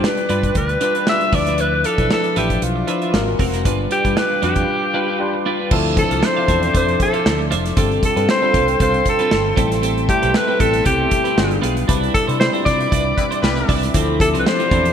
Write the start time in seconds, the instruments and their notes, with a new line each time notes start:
Already playing: tine electric piano G3 D4 F4 B4, analog synth pad B4 D5 G5 D6
0.04 alto saxophone B4, snare
0.17 muted clean electric guitar stroke, closed hi-hat
0.29 fretless electric bass G2, tine electric piano G3 D4 F4 B4, clean electric guitar D4 F4 B4, closed hi-hat
0.43 muted clean electric guitar stroke, kick, closed hi-hat
0.55 fretless electric bass D2, alto saxophone B4, muted clean electric guitar stroke, kick, closed hi-hat
0.69 muted clean electric guitar stroke, closed hi-hat
0.81 tine electric piano G3 D4 F4 B4, clean electric guitar D4 F4 B4, closed hi-hat
0.95 clean electric guitar D4 F4 B4, closed hi-hat
1.07 tine electric piano G3 D4 F4 B4, alto saxophone E5, snare
1.21 muted clean electric guitar stroke, closed hi-hat
1.32 fretless electric bass D2, tine electric piano F3 D4 E4 B4, clean electric guitar F4 B4 E5, alto saxophone D5, analog synth pad E5, kick, open hi-hat
1.46 clean electric guitar F4 B4 E5, snare, closed hi-hat
1.58 clean electric guitar F4 B4 E5, alto saxophone B4, closed hi-hat
1.73 muted clean electric guitar stroke
1.84 clean electric guitar F4 B4 F5, alto saxophone A4, closed hi-hat
1.98 fretless electric bass B1, tine electric piano F3 D4 E4 B4, clean electric guitar F4 B4 E5, kick, closed hi-hat
2.11 alto saxophone A4, snare
2.24 muted clean electric guitar stroke, closed hi-hat
2.36 fretless electric bass A1, tine electric piano F3 D4 E4 B4, clean electric guitar F4 B4 E5, alto saxophone G4, snare, closed hi-hat
2.50 muted clean electric guitar stroke, kick, closed hi-hat
2.62 fretless electric bass B1, alto saxophone F4, muted clean electric guitar stroke, closed hi-hat
2.76 muted clean electric guitar stroke
2.87 tine electric piano F3 D4 E4 B4, clean electric guitar F4 B4 E5, closed hi-hat
3.02 clean electric guitar F4 B4 E5, closed hi-hat
3.13 fretless electric bass G#1, tine electric piano G#3 C4 F#4 A#4, analog synth pad A#4 F#5 G#5 C6, muted clean electric guitar stroke, snare
3.28 muted clean electric guitar stroke
3.39 fretless electric bass F1, clean electric guitar C4 F#4 A#4, kick, open hi-hat
3.53 clean electric guitar C4 F#4 A#4, snare, closed hi-hat
3.65 fretless electric bass G1, tine electric piano G3 D4 F4 B4, clean electric guitar D4 F4 B4, analog synth pad B4 F5 G5 D6, kick, closed hi-hat
3.79 muted clean electric guitar stroke
3.91 clean electric guitar D4 F4 D5, alto saxophone G4, closed hi-hat
4.04 fretless electric bass G2, tine electric piano G3 D4 F4 B4, clean electric guitar D4 F4 B4, kick, closed hi-hat
4.17 alto saxophone B4, snare
4.31 muted clean electric guitar stroke
4.42 fretless electric bass F2, tine electric piano G3 D4 F4 B4, clean electric guitar D4 F4 B4, alto saxophone G4, snare, closed hi-hat
4.56 muted clean electric guitar stroke, kick, closed hi-hat
4.68 muted clean electric guitar stroke
4.82 muted clean electric guitar stroke
4.94 tine electric piano G3 D4 F4 B4, clean electric guitar D4 F4 B4
5.08 clean electric guitar D4 F4 B4
5.19 tine electric piano G3 D4 F4 B4, muted clean electric guitar stroke
5.34 muted clean electric guitar stroke
5.46 clean electric guitar D4 F4 B4
5.59 clean electric guitar D4 F4 B4
5.70 fretless electric bass D2, tine electric piano F3 C4 D4 E4 A4, clean electric guitar F4 C5 E5, analog synth pad C5 D5 E5 D6, kick, crash
5.97 tine electric piano F3 C4 D4 E4 A4, alto saxophone A4, muted clean electric guitar stroke, kick, closed hi-hat
6.11 fretless electric bass C2, clean electric guitar F4 C5 F5, closed hi-hat
6.23 alto saxophone C5, muted clean electric guitar stroke, snare
6.37 clean electric guitar F4 C5 F5
6.48 fretless electric bass E2, tine electric piano F3 C4 D4 E4 A4, clean electric guitar F4 C5 E5, kick, snare, closed hi-hat
6.62 muted clean electric guitar stroke, closed hi-hat
6.73 fretless electric bass F2, clean electric guitar F4 C5 E5, alto saxophone C5, kick, closed hi-hat
6.88 muted clean electric guitar stroke, closed hi-hat
6.99 alto saxophone A4, muted clean electric guitar stroke, kick, closed hi-hat
7.13 clean electric guitar F4 C5 F5, closed hi-hat
7.25 fretless electric bass D2, muted clean electric guitar stroke, snare
7.39 muted clean electric guitar stroke
7.51 fretless electric bass F1, clean electric guitar F4 C5 E5, closed hi-hat
7.65 muted clean electric guitar stroke, snare, closed hi-hat
7.77 fretless electric bass G1, tine electric piano G3 C4 D4 F4 A4, clean electric guitar C4 F4 A4, analog synth pad A4 F5 G5 C6, kick, closed hi-hat
7.91 closed hi-hat
8.03 alto saxophone A4, muted clean electric guitar stroke, kick, closed hi-hat
8.16 fretless electric bass G2, tine electric piano G3 C4 D4 F4 B4, clean electric guitar C4 F4 B4, closed hi-hat
8.29 alto saxophone C5, muted clean electric guitar stroke, snare
8.41 tine electric piano G3 C4 D4 F4 A4, clean electric guitar C4 F4 B4
8.53 fretless electric bass C2, clean electric guitar C4 F4 A4, kick, closed hi-hat
8.68 muted clean electric guitar stroke, closed hi-hat
8.80 fretless electric bass C2, clean electric guitar C4 F4 A4, alto saxophone C5, kick, closed hi-hat
8.94 muted clean electric guitar stroke, closed hi-hat
9.05 alto saxophone A4, muted clean electric guitar stroke, kick, closed hi-hat
9.19 clean electric guitar C4 F4 B4, closed hi-hat
9.31 fretless electric bass G1, muted clean electric guitar stroke, snare
9.45 muted clean electric guitar stroke
9.56 fretless electric bass A1, tine electric piano G3 A3 C4 E4 A4, clean electric guitar C4 G4 A4, analog synth pad E5, kick, closed hi-hat
9.71 muted clean electric guitar stroke, snare, closed hi-hat
9.82 clean electric guitar C4 G4 A4, closed hi-hat
9.98 closed hi-hat
10.08 tine electric piano G3 A3 C4 E4 A4, alto saxophone G4, muted clean electric guitar stroke, kick, closed hi-hat
10.22 fretless electric bass B1, clean electric guitar C4 G4 B4, closed hi-hat
10.34 alto saxophone B4, muted clean electric guitar stroke, snare
10.47 clean electric guitar C4 G4 B4
10.59 fretless electric bass A1, tine electric piano G3 A3 B3 E4 A4, clean electric guitar C4 G4 A4, alto saxophone A4, kick, closed hi-hat
10.67 tine electric piano C4
10.73 muted clean electric guitar stroke, closed hi-hat
10.84 fretless electric bass C2, clean electric guitar C4 G4 A4, alto saxophone G4, kick, closed hi-hat
10.99 muted clean electric guitar stroke
11.10 muted clean electric guitar stroke, kick, closed hi-hat
11.24 clean electric guitar C4 G4 B4, closed hi-hat
11.36 fretless electric bass G1, tine electric piano G3 B3 D4 F4 G#4, analog synth pad G#4 F5 B5, muted clean electric guitar stroke, snare
11.50 muted clean electric guitar stroke, closed hi-hat
11.62 fretless electric bass B1, clean electric guitar B3 F4 G#4, closed hi-hat
11.76 muted clean electric guitar stroke, closed hi-hat
11.88 fretless electric bass C2, tine electric piano G3 C4 D4 E4 B4, analog synth pad C4 E5 D6, clean electric guitar D4 E4 B4, kick, closed hi-hat
12.03 closed hi-hat
12.14 alto saxophone A4, muted clean electric guitar stroke, kick, closed hi-hat
12.27 fretless electric bass C3, tine electric piano G3 C4 D4 E4 D5, clean electric guitar D4 E4 C5, closed hi-hat
12.40 alto saxophone C5, muted clean electric guitar stroke, snare
12.53 tine electric piano G3 C4 D4 E4 F4, clean electric guitar D4 E4 C5, closed hi-hat
12.60 tine electric piano G4
12.65 fretless electric bass C3, clean electric guitar D4 E4 B4, alto saxophone D5, kick, snare, closed hi-hat
12.79 muted clean electric guitar stroke, closed hi-hat
12.91 fretless electric bass C2, clean electric guitar D4 E4 B4, kick, closed hi-hat
13.05 muted clean electric guitar stroke
13.17 horn section G3 B3 E4 B4, muted clean electric guitar stroke, kick, closed hi-hat
13.31 clean electric guitar D4 E4 C5, closed hi-hat
13.42 fretless electric bass C2, horn section G3 B3 E4 B4, muted clean electric guitar stroke, snare
13.57 muted clean electric guitar stroke, closed hi-hat
13.68 fretless electric bass C2, clean electric guitar D4 E4 B4, kick, open hi-hat
13.83 muted clean electric guitar stroke, snare, closed hi-hat
13.94 fretless electric bass D2, tine electric piano F3 C4 D4 E4 A4, clean electric guitar F3 C4 E4, analog synth pad D5, kick, closed hi-hat
14.19 tine electric piano F3 C4 D4 E4 G4, alto saxophone A4, muted clean electric guitar stroke, kick, closed hi-hat
14.34 fretless electric bass C2, clean electric guitar F3 C4 F4, closed hi-hat
14.39 alto saxophone B4
14.45 alto saxophone C5, muted clean electric guitar stroke, snare
14.59 clean electric guitar F3 C4 F4, closed hi-hat
14.70 fretless electric bass E2, clean electric guitar F3 C4 E4, tine electric piano C4 D4 E4 F4 A4, kick, closed hi-hat
14.85 muted clean electric guitar stroke, closed hi-hat